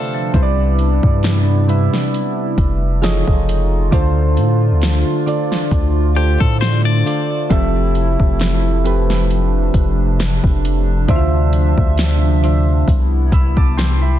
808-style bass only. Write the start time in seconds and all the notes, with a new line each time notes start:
0.34 C2
1.03 G2
2.58 F1
3.28 F1
3.93 D2
4.37 A2
4.71 D2
5.72 D2
6.41 A2
7.51 F1
8.20 F1
9.74 F1
10.44 F1
11.09 D2
11.78 D2
12.88 C2
13.32 C2